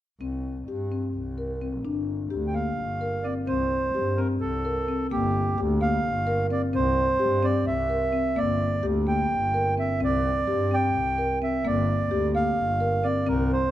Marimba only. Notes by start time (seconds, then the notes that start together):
0.21 C4
0.68 G4
0.92 C4
1.38 A#4
1.61 C4
1.85 D4
2.30 G4
2.54 A#3
3.01 A#4
3.25 C4
3.48 C4
3.95 G4
4.18 C4
4.65 A#4
4.88 C4
5.11 A#3
5.58 G4
5.81 A#3
6.27 A#4
6.50 C4
6.73 C4
7.19 G4
7.43 C4
7.90 A#4
8.13 C4
8.36 A#3
8.83 G4
9.07 A#3
9.54 A#4
9.77 C4
10.00 C4
10.47 G4
10.71 C4
11.18 A#4
11.42 C4
11.65 A#3
12.11 G4
12.35 A#3
12.80 A#4
13.04 C4
13.27 C4